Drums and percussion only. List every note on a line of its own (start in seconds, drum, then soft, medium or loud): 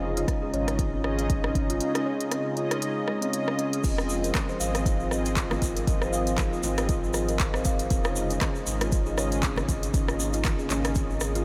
0.17 closed hi-hat soft
0.28 kick loud
0.28 cross-stick medium
0.28 closed hi-hat medium
0.54 closed hi-hat soft
0.68 cross-stick medium
0.68 closed hi-hat soft
0.79 kick loud
0.79 closed hi-hat medium
1.04 cross-stick medium
1.19 closed hi-hat soft
1.30 kick loud
1.30 closed hi-hat medium
1.44 cross-stick medium
1.55 kick medium
1.55 closed hi-hat soft
1.70 closed hi-hat medium
1.80 closed hi-hat medium
1.95 cross-stick medium
1.95 closed hi-hat soft
2.21 closed hi-hat soft
2.31 cross-stick medium
2.31 closed hi-hat medium
2.57 closed hi-hat soft
2.71 cross-stick medium
2.71 closed hi-hat soft
2.82 closed hi-hat medium
3.08 cross-stick medium
3.22 closed hi-hat soft
3.33 closed hi-hat medium
3.48 cross-stick medium
3.59 closed hi-hat soft
3.73 closed hi-hat medium
3.84 kick loud
3.84 closed hi-hat medium
3.84 crash medium
3.84 shaker medium
3.98 cross-stick medium
3.98 shaker soft
4.09 shaker medium
4.24 closed hi-hat soft
4.24 shaker soft
4.34 kick loud
4.34 cross-stick medium
4.34 clap loud
4.34 closed hi-hat medium
4.34 low bongo loud
4.34 shaker medium
4.49 shaker soft
4.60 closed hi-hat soft
4.60 shaker medium
4.75 cross-stick medium
4.75 closed hi-hat soft
4.75 shaker soft
4.86 kick loud
4.86 closed hi-hat medium
4.86 shaker soft
5.00 shaker soft
5.11 cross-stick medium
5.11 shaker medium
5.25 closed hi-hat soft
5.25 shaker soft
5.37 kick loud
5.37 clap loud
5.37 closed hi-hat medium
5.37 shaker medium
5.51 cross-stick medium
5.51 high bongo medium
5.51 low bongo medium
5.51 shaker soft
5.62 kick medium
5.62 closed hi-hat soft
5.62 low bongo medium
5.62 shaker medium
5.77 closed hi-hat medium
5.77 shaker soft
5.87 kick loud
5.87 closed hi-hat medium
5.87 shaker soft
6.02 cross-stick medium
6.02 shaker soft
6.13 shaker medium
6.27 closed hi-hat soft
6.27 shaker soft
6.38 kick loud
6.38 cross-stick medium
6.38 clap medium
6.38 closed hi-hat medium
6.38 low bongo loud
6.38 shaker soft
6.53 shaker soft
6.63 closed hi-hat soft
6.63 high bongo medium
6.63 shaker medium
6.78 cross-stick loud
6.78 closed hi-hat soft
6.78 shaker soft
6.89 kick loud
6.89 closed hi-hat medium
6.89 shaker medium
7.04 shaker soft
7.14 cross-stick medium
7.14 shaker loud
7.29 closed hi-hat soft
7.29 shaker soft
7.40 kick loud
7.40 clap loud
7.40 closed hi-hat medium
7.40 shaker soft
7.54 cross-stick medium
7.54 shaker soft
7.65 kick medium
7.65 closed hi-hat soft
7.65 shaker loud
7.79 closed hi-hat medium
7.79 shaker soft
7.90 kick loud
7.90 closed hi-hat medium
7.90 shaker medium
8.04 cross-stick loud
8.04 shaker soft
8.16 shaker medium
8.30 closed hi-hat soft
8.30 shaker soft
8.41 kick loud
8.41 cross-stick medium
8.41 clap medium
8.41 closed hi-hat medium
8.41 low bongo medium
8.41 shaker medium
8.55 shaker soft
8.67 closed hi-hat soft
8.67 shaker medium
8.81 cross-stick loud
8.81 closed hi-hat soft
8.81 shaker soft
8.92 kick loud
8.92 closed hi-hat medium
8.92 shaker medium
9.06 shaker soft
9.18 cross-stick medium
9.18 shaker medium
9.32 closed hi-hat soft
9.32 shaker soft
9.42 kick loud
9.42 clap loud
9.42 closed hi-hat medium
9.42 shaker medium
9.56 cross-stick medium
9.56 high bongo medium
9.56 low bongo medium
9.56 shaker soft
9.68 kick medium
9.68 closed hi-hat soft
9.68 low bongo medium
9.68 shaker medium
9.83 closed hi-hat medium
9.83 shaker soft
9.94 kick loud
9.94 closed hi-hat medium
9.94 shaker medium
10.08 cross-stick medium
10.08 shaker soft
10.20 shaker medium
10.33 closed hi-hat soft
10.33 shaker soft
10.44 kick loud
10.44 cross-stick medium
10.44 clap medium
10.44 closed hi-hat medium
10.44 low bongo medium
10.44 shaker medium
10.59 shaker soft
10.70 clap soft
10.70 closed hi-hat soft
10.70 high bongo medium
10.70 shaker medium
10.85 cross-stick loud
10.85 closed hi-hat soft
10.85 shaker soft
10.95 kick loud
10.95 closed hi-hat medium
10.95 shaker medium
11.10 shaker soft
11.20 cross-stick medium
11.20 shaker medium
11.35 closed hi-hat soft
11.35 shaker soft